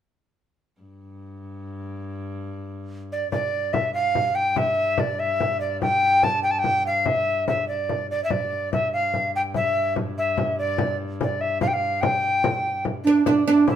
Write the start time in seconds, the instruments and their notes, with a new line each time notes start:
0.81 viola da gamba G2
3.12 recorder D5
3.31 viola da gamba G2, recorder D5, frame drum
3.73 recorder E5, frame drum
3.94 recorder F5
4.15 frame drum
4.35 recorder G5
4.56 recorder E5, frame drum
4.77 frame drum
4.98 recorder D5, frame drum
5.19 recorder E5
5.40 frame drum
5.61 recorder D5
5.82 recorder G5, frame drum
6.03 frame drum
6.23 recorder A5, frame drum
6.43 recorder G5
6.51 recorder A5
6.59 recorder G5
6.64 frame drum
6.87 recorder F5
7.06 recorder E5, frame drum
7.27 frame drum
7.48 recorder E5, frame drum
7.68 recorder D5
7.89 frame drum
8.10 recorder D5, frame drum
8.24 recorder E5
8.30 viola da gamba G2, recorder D5, frame drum
8.53 frame drum
8.73 recorder E5, frame drum
8.93 recorder F5
9.14 frame drum
9.36 recorder G5
9.54 recorder E5, frame drum
9.76 frame drum
9.96 frame drum
10.18 recorder E5
10.38 frame drum
10.59 recorder D5
10.78 frame drum
11.00 frame drum
11.21 recorder D5, frame drum
11.41 recorder E5
11.61 recorder F5, frame drum
11.68 recorder G5
11.73 recorder F5
12.01 recorder G5, frame drum
12.44 frame drum
12.85 frame drum
13.04 recorder D4, oud D4, frame drum
13.26 viola da gamba G2, recorder D4, oud D4, frame drum
13.46 recorder D4, oud D4, frame drum
13.68 recorder E4, frame drum